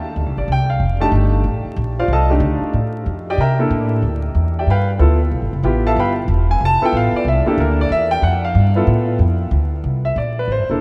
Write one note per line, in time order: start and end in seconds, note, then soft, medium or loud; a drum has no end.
0.00 0.15 D#2 medium
0.16 0.26 D2 medium
0.26 0.37 C2 medium
0.37 0.47 A1 medium
0.37 0.49 D5 medium
0.48 0.79 C2 medium
0.52 0.70 G5 medium
0.70 0.99 F5 medium
0.80 1.11 F1 medium
1.00 1.42 A3 medium
1.00 1.43 D4 medium
1.00 1.43 D#4 medium
1.00 1.43 G4 medium
1.00 1.08 A5 loud
1.11 1.43 G1 medium
1.44 1.64 A1 medium
1.65 muted upright bass stroke soft
1.76 2.08 A#1 medium
1.99 2.10 F4 medium
1.99 2.10 C5 medium
1.99 2.10 D5 medium
1.99 2.10 F5 medium
2.08 2.39 C2 medium
2.13 2.31 A4 medium
2.13 2.31 D#5 medium
2.13 2.31 F5 medium
2.13 2.31 A5 medium
2.30 2.72 A3 medium
2.30 2.72 D4 medium
2.30 2.72 D#4 medium
2.30 2.72 G4 medium
2.40 2.60 D2 loud
2.61 muted upright bass stroke soft
2.73 3.05 A2 medium
3.06 3.37 F2 medium
3.30 3.40 G4 medium
3.30 3.40 D5 medium
3.30 3.40 D#5 medium
3.30 3.40 G5 medium
3.38 3.69 C3 medium
3.38 3.60 A#4 medium
3.38 3.60 E5 medium
3.38 3.60 G5 medium
3.38 3.60 A#5 medium
3.59 4.01 A#3 medium
3.59 4.01 D4 medium
3.59 4.01 E4 medium
3.59 4.01 A4 medium
3.70 4.02 A2 medium
4.02 4.34 D2 medium
4.35 4.66 E2 medium
4.59 4.69 G4 medium
4.59 4.69 D5 medium
4.59 4.69 E5 medium
4.59 4.69 G5 medium
4.66 4.98 G2 medium
4.66 4.89 B5 medium
4.71 4.89 B4 medium
4.71 4.89 F5 medium
4.71 4.89 G5 medium
4.99 5.31 D2 medium
4.99 5.18 B3 medium
4.99 5.18 E4 medium
4.99 5.18 F4 medium
4.99 5.19 A4 medium
5.31 5.43 B1 medium
5.42 5.52 G1 medium
5.53 5.63 F1 medium
5.63 5.95 A1 medium
5.63 6.13 B3 medium
5.63 6.13 E4 medium
5.63 6.13 F4 medium
5.63 6.14 G4 medium
5.87 5.98 A4 medium
5.87 5.98 E5 medium
5.87 5.97 F5 medium
5.87 5.97 A5 medium
5.96 6.27 G1 medium
5.96 6.11 B4 medium
5.96 6.11 F5 medium
5.96 6.11 G5 medium
5.96 6.11 B5 medium
6.28 6.60 E1 medium
6.51 6.62 G#5 loud
6.60 6.80 F1 medium
6.65 6.83 A5 loud
6.82 7.24 B3 medium
6.82 7.24 E4 medium
6.82 7.24 F4 medium
6.82 7.24 A4 medium
6.82 6.95 G5 medium
6.82 muted upright bass stroke soft
6.92 7.12 A1 medium
6.97 7.15 F5 medium
7.13 7.27 D5 medium
7.13 muted upright bass stroke soft
7.25 7.44 C2 medium
7.25 7.47 E5 medium
7.46 7.88 A#3 medium
7.46 7.88 D4 medium
7.46 7.88 E4 medium
7.46 7.59 G4 medium
7.46 7.89 A4 medium
7.46 muted upright bass stroke soft
7.58 7.89 D2 medium
7.58 7.79 A#4 medium
7.81 7.91 D5 loud
7.90 8.21 E2 medium
7.90 8.11 E5 loud
8.11 8.22 G5 loud
8.22 8.54 F2 medium
8.22 8.43 F#5 medium
8.45 8.74 F5 medium
8.55 8.86 G2 medium
8.76 9.17 B3 medium
8.76 9.18 E4 medium
8.76 9.18 F4 medium
8.76 9.18 A4 medium
8.87 9.18 A2 medium
9.19 9.50 F2 medium
9.51 9.83 D2 medium
9.84 10.15 C2 medium
10.05 10.16 E5 medium
10.16 10.47 A#1 medium
10.16 10.37 D5 medium
10.39 10.50 B4 medium
10.48 10.59 A1 medium
10.52 10.70 C5 medium
10.59 10.69 G1 medium
10.69 10.79 E1 medium
10.69 10.81 A#3 medium
10.69 10.81 D4 medium
10.69 10.81 E4 soft
10.69 10.81 A4 medium